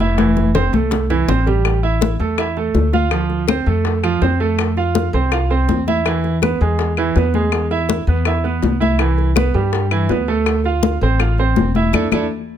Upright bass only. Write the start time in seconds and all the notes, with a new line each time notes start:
Already playing: F1
0.73 C2
1.28 A1
2.20 E2
2.74 D2
3.66 F2
4.22 F2
5.13 C2
5.68 E2
6.61 E2
7.16 E2
8.07 E2
8.63 C2
9.54 G2
10.10 D2
11.01 A1
11.57 E1
11.93 E2
12.12 E2